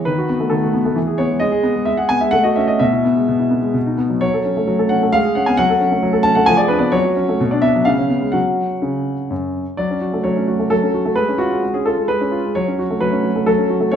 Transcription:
0.05 D#3 B4
0.18 F#4
0.29 B3
0.40 A3
0.50 D#3 A4
0.63 F#4
0.74 B3
0.85 A3
0.96 E3
1.07 G#4
1.18 B3 C#5
1.30 G#3
1.40 G#3 D#5
1.52 G#4
1.63 B3
1.75 G#3
1.85 G#3 E5
1.97 G#4 F#5
2.09 B3 G#5
2.21 G#3 E5
2.31 A3 F#5
2.43 F#4 D#5
2.56 C#4 E5
2.68 F#4 D#5
2.79 B2 E5
2.93 E4
3.04 B3
3.16 G#3
3.28 B2
3.39 E4
3.51 B3
3.62 G#3
3.74 B2
3.86 D#4
3.97 B3
4.10 F#3
4.21 F#3 C#5
4.34 A4
4.45 C#4
4.57 A3
4.67 F#3
4.79 A4
4.89 C#4 F#5
5.03 A3
5.12 G#3 F5
5.25 G#4
5.35 C#4 F#5
5.46 B3 G#5
5.57 F#3 F#5
5.70 A4
5.81 C#4
5.92 A3
6.03 F#3
6.13 A4
6.23 C#4 A5
6.35 A3 F#5
6.46 F3 G#5
6.57 G#4 D5
6.68 D4 B4
6.79 B3 D5
6.92 F#3 C#5
7.05 F#4
7.16 C#4
7.29 A3
7.40 B2
7.51 D4 D5
7.62 B3 E5
7.76 F#3
7.85 C#3 F5
7.98 C#4
8.10 B3
8.21 G#3
8.32 F#3 C#4 F#4 F#5
8.82 C#3
9.30 F#2
9.77 F#3 D5
9.91 C#4
10.02 F#4
10.13 A3
10.24 F#3 C#5
10.37 C#4
10.48 F#4
10.59 A3
10.70 F#3 A4
10.83 C#4
10.94 F#4
11.05 A3
11.16 G#3 B4
11.29 C#4
11.38 F4 F#4
11.52 G#3
11.63 G#3
11.74 C#4 G#4
11.85 F4 A4
11.97 G#3
12.08 G#3 B4
12.21 C#4
12.32 F4
12.45 G#3
12.55 F#3 C#5
12.68 C#4
12.79 F#4
12.90 A3
13.01 F#3 B4
13.12 C#4
13.24 F#4
13.36 A3
13.46 F#3 A4
13.58 C#4
13.70 F#4
13.80 A3
13.91 A3 C#5

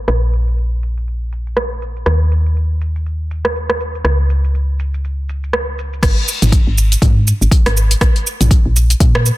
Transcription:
0.08 A#1, cross-stick, shaker
0.33 shaker
0.48 shaker
0.58 shaker
0.83 shaker
0.97 shaker
1.08 shaker
1.32 shaker
1.47 shaker
1.57 cross-stick, shaker
1.82 shaker
1.96 shaker
2.06 D#2, cross-stick, shaker
2.32 shaker
2.46 shaker
2.57 shaker
2.81 shaker
2.96 shaker
3.06 shaker
3.31 shaker
3.45 cross-stick, shaker
3.56 shaker
3.70 cross-stick
3.80 shaker
3.95 shaker
4.04 C#2, cross-stick, shaker
4.30 shaker
4.44 shaker
4.55 shaker
4.79 shaker
4.94 shaker
5.04 shaker
5.29 shaker
5.44 shaker
5.53 cross-stick, shaker
5.79 shaker
5.93 shaker
6.03 G#1, kick, cross-stick, closed hi-hat, crash, shaker
6.28 shaker
6.42 G#1, closed hi-hat, mid tom, shaker
6.52 kick, closed hi-hat, shaker
6.67 G#1
6.78 shaker
6.92 closed hi-hat, shaker
7.02 G#2, kick, closed hi-hat, mid tom, shaker
7.27 shaker
7.41 G#1, shaker
7.51 kick, closed hi-hat, shaker
7.66 G#1, cross-stick, closed hi-hat
7.77 shaker
7.91 closed hi-hat, shaker
8.01 A#1, kick, cross-stick, closed hi-hat, shaker
8.16 closed hi-hat
8.27 shaker
8.41 A#1, closed hi-hat, mid tom, shaker
8.51 kick, closed hi-hat, shaker
8.65 A#1
8.76 shaker
8.90 closed hi-hat, shaker
9.00 A#2, kick, closed hi-hat, shaker
9.15 cross-stick
9.26 shaker

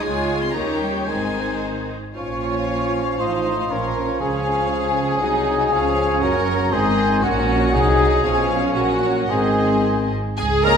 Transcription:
0.02 C#2 G#3 F4 G#4 C#5 G#5 G#6
0.41 C4 C6
0.53 D#2 D#3 G3 A#3 C#4 D#4 G4 C#5 A#5 G6
0.80 G3 G5
1.07 G#1 D#3 G#3 C4 D#4 G#4 C5 G#5 G#6
2.16 A#1 A#2 F3 C#4 F4 C#5 F5 C#6
3.19 A1 A2 D#4 F4 C5 D#5 C6
3.70 A#1 A#2 C#4 A#4 C#5 A#5
4.21 C#2 C#3 F3 G#4 F5 G#5
5.21 C2 C3 F#3 D#4 D#5 F#5
5.72 C#2 C#3 F3 C#4 C#5 F5
6.23 F#1 F#2 F#3 F#4 A#4 F#5 A#5
6.72 G#1 G#2 D#3 C4 G#4 C5 D#5 G#5
7.22 A#1 A#2 F#3 C#4 F#4 A#4 C#5 F#5
7.73 C2 C3 D#4 G#4 D#5 G#5
8.24 B1 B2 F3 C#4 C#5 F5
8.75 A#1 A#2 F#3 F#4 A#4 F#5
9.29 G#1 G#2 D#3 C4 G#4 C5 D#5 G#5
10.38 C#2 G#3 G#4 G#5
10.64 F3 G#3 A#3 C#4 G#4 A#4 A#5 F6

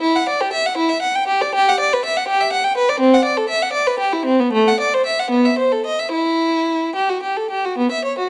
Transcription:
0.01 E4
0.16 F#5
0.29 D5
0.41 G4
0.53 E5
0.66 F#5
0.77 E4
0.89 E5
1.02 F#5
1.15 G5
1.28 G4
1.42 D5
1.55 G4
1.68 F#5
1.80 D5
1.93 B4
2.05 E5
2.17 F#5
2.28 G4
2.41 E5
2.52 F#5
2.64 G5
2.77 B4
2.89 D5
3.00 C4
3.14 F#5
3.25 D5
3.37 A4
3.49 E5
3.62 F#5
3.73 D5
3.87 B4
3.99 G4
4.13 E4
4.25 C4
4.40 B3
4.53 A3
4.68 F#5
4.80 D5
4.94 C5
5.06 E5
5.19 F#5
5.30 B3
5.45 E5
5.58 C5
5.72 A4
5.86 D#5
5.99 E5
6.12 E4
6.95 G4
7.09 F#4
7.22 G4
7.36 A4
7.50 G4
7.65 F#4
7.78 B3
7.91 E5
8.05 C#5
8.18 F#4

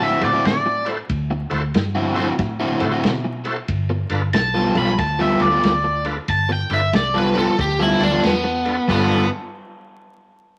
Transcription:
Already playing: A2
0.00 D3 C4 E4 F#4 E5
0.20 A2 E4 F#4 A4 C5 D5, snare, ride
0.33 D3 C4 E4 F#4
0.45 A2 D5, snare, ride
0.66 muted overdriven electric guitar stroke
0.85 E4 F#4 A4 C5, snare, ride
1.09 D2, kick, ride
1.31 muted overdriven electric guitar stroke
1.50 D2 E4 F#4 A4 C5, snare, ride
1.74 G2, muted overdriven electric guitar stroke, snare, ride
1.95 D3 C4 E4 F#4
2.14 D3 C4 E4 F#4 A4 C5, snare, ride
2.39 A2, muted overdriven electric guitar stroke, kick, snare, ride
2.60 D3 C4 E4 F#4
2.80 A2 E4 F#4 A4 C5, snare, ride
2.92 D3 C4 E4 F#4
3.03 B2, snare, ride
3.24 muted overdriven electric guitar stroke
3.44 E4 F#4 A4 C5, snare, ride
3.68 G1, kick, ride
3.90 muted overdriven electric guitar stroke
4.10 G1 D4 F4 A4 B4, snare, ride
4.33 B1 A5, muted overdriven electric guitar stroke, snare, ride
4.54 G3 B3 F4 A4
4.75 B1 G3 B3 D4 F4 A4 B4 B5, snare, ride
4.98 D2 A5, muted overdriven electric guitar stroke, kick, snare, ride
5.19 G3 B3 F4 A4 E5
5.39 D2 D4 F4 A4 B4 D5, snare, ride
5.52 G3 B3 F4 A4
5.63 D2 D5, snare, ride
5.84 muted overdriven electric guitar stroke
6.04 D4 F4 A4 B4, snare, ride
6.28 G1 A5, kick, ride
6.49 G5, muted overdriven electric guitar stroke
6.70 G1 D4 F4 A4 B4 E5, snare, ride
6.93 C2 D5, muted overdriven electric guitar stroke, snare, ride
7.14 G3 B3 F4 A4 B4
7.34 G3 B3 D4 F4 A4 B4, snare, ride
7.38 A4
7.59 D2 G4, muted overdriven electric guitar stroke, kick, snare, ride
7.79 G3 B3 E4 F4 A4
7.99 D2 D4 F4 A4 D5, snare, ride
8.03 D4
8.12 G3 B3 F4 A4
8.23 E2 B3, snare, ride
8.44 muted overdriven electric guitar stroke
8.65 D4 F4 A4 B4, snare, ride
8.88 G1 G3 B3 D4 F4 A4 B4, kick, splash

